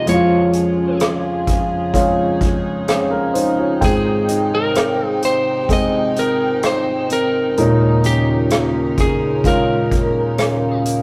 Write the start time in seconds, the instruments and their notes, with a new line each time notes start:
Already playing: steel-string acoustic guitar G#3 C4 F4, string section G#3 F4
0.06 string section F2 C#3 G#4, grand piano F2 F3 G#3 C#4 E4, steel-string acoustic guitar F3, lead electric guitar C#5, closed hi-hat
0.14 grand piano F4
0.53 steel-string acoustic guitar C#4, closed hi-hat
1.00 steel-string acoustic guitar G#3, cross-stick, closed hi-hat
1.47 steel-string acoustic guitar G#4, kick, closed hi-hat
1.93 grand piano G#3 C#4 F4, steel-string acoustic guitar C#4, string section D#4, kick, closed hi-hat
2.41 steel-string acoustic guitar G#3, kick, closed hi-hat
2.88 grand piano C4 G#4, steel-string acoustic guitar C#4, cross-stick, closed hi-hat
3.11 grand piano C#4 A#4
3.34 steel-string acoustic guitar G#3, grand piano D#4 C5, closed hi-hat
3.58 grand piano F4 C#5
3.81 grand piano G#2 D#3 G#3 C4 G5, string section C3 G5, steel-string acoustic guitar G#3, lead electric guitar G#4, kick, closed hi-hat
4.29 steel-string acoustic guitar D#4, closed hi-hat
4.55 lead electric guitar A#4
4.75 steel-string acoustic guitar C4, cross-stick, closed hi-hat
5.08 lead electric guitar G#4
5.22 steel-string acoustic guitar G4, lead electric guitar C5, closed hi-hat
5.69 grand piano G#3 C4 G#4, steel-string acoustic guitar D#4, lead electric guitar D#5, kick, closed hi-hat
6.16 steel-string acoustic guitar C4, lead electric guitar A#4, closed hi-hat
6.63 steel-string acoustic guitar D#4, lead electric guitar C5, cross-stick, closed hi-hat
7.10 steel-string acoustic guitar C4, lead electric guitar A#4, closed hi-hat
7.57 grand piano D#2 A#2 G#3 C#4 D#4, string section C#3 G#3 A#4, steel-string acoustic guitar D#3, closed hi-hat
8.04 steel-string acoustic guitar C#4, lead electric guitar G4, closed hi-hat
8.50 steel-string acoustic guitar A#3, cross-stick, closed hi-hat
8.98 steel-string acoustic guitar G#4, lead electric guitar G#4, kick, closed hi-hat
9.44 grand piano G#3 C#4 F4, steel-string acoustic guitar C#4, lead electric guitar A#4, kick, closed hi-hat
9.91 steel-string acoustic guitar A#3, kick, closed hi-hat
10.38 steel-string acoustic guitar C#4, cross-stick, closed hi-hat
10.86 steel-string acoustic guitar A#3, closed hi-hat